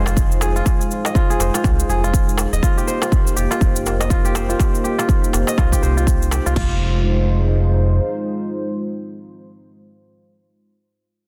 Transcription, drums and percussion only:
0.06 darbuka tek, shaker
0.17 kick, shaker
0.32 shaker
0.41 darbuka ka, shaker
0.56 shaker
0.66 kick, darbuka ka, shaker
0.81 shaker
0.91 shaker
1.05 darbuka tek, shaker
1.15 kick, shaker
1.30 shaker
1.40 darbuka tek, shaker
1.54 darbuka tek, shaker
1.64 kick, darbuka ka, shaker
1.80 shaker
1.90 shaker
2.04 shaker
2.14 kick, shaker
2.29 shaker
2.38 darbuka ka, shaker
2.53 shaker
2.63 kick, shaker
2.78 shaker
2.88 shaker
3.02 darbuka tek, shaker
3.12 kick, shaker
3.27 shaker
3.37 shaker
3.51 darbuka tek, shaker
3.61 kick, shaker
3.76 shaker
3.86 darbuka ka, shaker
4.01 darbuka tek, shaker
4.10 kick, shaker
4.25 shaker
4.35 darbuka ka, shaker
4.50 shaker
4.60 kick, darbuka ka, shaker
4.75 shaker
4.85 shaker
4.99 darbuka tek, shaker
5.09 kick, shaker
5.24 shaker
5.33 darbuka tek, shaker
5.47 darbuka tek, shaker
5.58 kick, darbuka ka, shaker
5.72 kick, shaker
5.83 shaker
5.98 shaker
6.07 kick, shaker
6.22 shaker
6.31 darbuka ka, shaker
6.46 shaker
6.56 kick, floor tom, crash

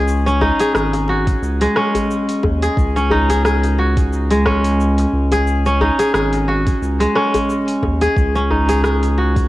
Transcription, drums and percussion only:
0.08 shaker
0.27 shaker
0.41 djembe tone, djembe bass
0.60 open hi-hat, shaker
0.75 cross-stick, shaker
0.93 open hi-hat, djembe slap, shaker
1.08 djembe slap
1.27 kick, open hi-hat, shaker
1.43 shaker
1.61 open hi-hat, shaker
1.76 cross-stick
1.95 open hi-hat, djembe bass, shaker
2.11 shaker
2.29 open hi-hat, shaker
2.43 kick, djembe slap, djembe tone, djembe bass
2.62 open hi-hat, shaker
2.77 kick, shaker
2.97 shaker
3.10 djembe tone, djembe bass
3.29 open hi-hat, djembe tone, shaker
3.45 cross-stick, shaker
3.63 open hi-hat, djembe slap, shaker
3.78 djembe slap
3.97 kick, open hi-hat, shaker
4.13 shaker
4.31 open hi-hat, shaker
4.46 kick, cross-stick
4.64 open hi-hat, shaker
4.80 shaker
4.98 open hi-hat, djembe slap, shaker
5.32 open hi-hat, djembe slap, djembe tone, shaker
5.47 shaker
5.66 shaker
5.81 djembe tone, djembe bass
5.99 open hi-hat, shaker
6.14 cross-stick, shaker
6.33 open hi-hat, djembe slap, shaker
6.49 djembe slap
6.67 kick, open hi-hat, shaker
6.83 shaker
7.00 open hi-hat, shaker
7.16 cross-stick
7.34 open hi-hat, djembe bass, shaker
7.50 shaker
7.68 open hi-hat, shaker
7.83 kick, djembe slap, djembe tone, djembe bass
8.01 open hi-hat, shaker
8.17 kick, shaker
8.35 shaker
8.51 djembe tone, djembe bass
8.69 open hi-hat, djembe tone, shaker
8.84 cross-stick, shaker
9.03 open hi-hat, djembe slap, shaker
9.18 djembe slap
9.36 kick, open hi-hat, shaker

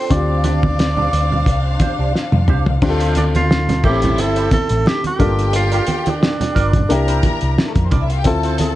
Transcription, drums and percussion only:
0.11 kick, closed hi-hat, muted conga
0.44 closed hi-hat, muted conga, high conga
0.63 kick, high conga
0.79 snare, closed hi-hat
0.97 low conga
1.13 closed hi-hat
1.32 low conga
1.46 kick, closed hi-hat, muted conga
1.80 kick, closed hi-hat, high conga
2.15 snare
2.32 high tom, high conga
2.48 mid tom, muted conga, low conga
2.66 floor tom
2.82 kick, crash, muted conga
3.00 closed hi-hat
3.15 closed hi-hat, muted conga, high conga
3.35 closed hi-hat, high conga
3.51 snare, muted conga
3.69 snare, closed hi-hat, low conga
3.83 kick, crash
4.02 closed hi-hat, low conga
4.18 closed hi-hat, muted conga
4.36 closed hi-hat
4.51 kick, closed hi-hat, muted conga, high conga
4.69 closed hi-hat
4.86 snare, muted conga
5.04 closed hi-hat, high conga
5.20 kick, closed hi-hat, muted conga, low conga
5.39 closed hi-hat
5.53 closed hi-hat
5.72 closed hi-hat
5.87 closed hi-hat, high conga
6.06 closed hi-hat, high conga
6.23 snare, muted conga
6.41 snare, closed hi-hat, low conga
6.56 kick, closed hi-hat, muted conga
6.73 kick, closed hi-hat, low conga
6.90 closed hi-hat, muted conga
7.08 closed hi-hat
7.23 kick, closed hi-hat, high conga
7.41 closed hi-hat
7.58 snare, muted conga
7.75 kick, closed hi-hat, high conga
7.91 kick, closed hi-hat, muted conga, low conga
8.10 closed hi-hat
8.24 kick, closed hi-hat, muted conga
8.43 closed hi-hat
8.58 closed hi-hat, high conga

